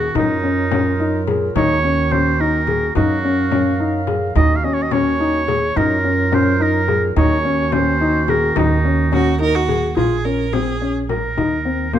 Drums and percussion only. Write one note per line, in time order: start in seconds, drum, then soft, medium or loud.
0.15 frame drum medium
0.71 frame drum medium
1.00 frame drum soft
1.27 frame drum medium
1.56 frame drum medium
2.11 frame drum medium
2.67 frame drum medium
2.95 frame drum medium
3.51 frame drum medium
4.07 frame drum medium
4.35 frame drum medium
4.91 frame drum medium
5.20 frame drum soft
5.48 frame drum medium
5.76 frame drum medium
6.32 frame drum medium
6.60 frame drum soft
6.88 frame drum medium
7.16 frame drum medium
7.72 frame drum medium
8.01 frame drum soft
8.28 frame drum medium
8.56 frame drum medium
9.13 frame drum medium
9.69 frame drum medium
9.97 frame drum medium
10.53 frame drum medium
11.09 frame drum medium
11.38 frame drum medium
11.93 frame drum medium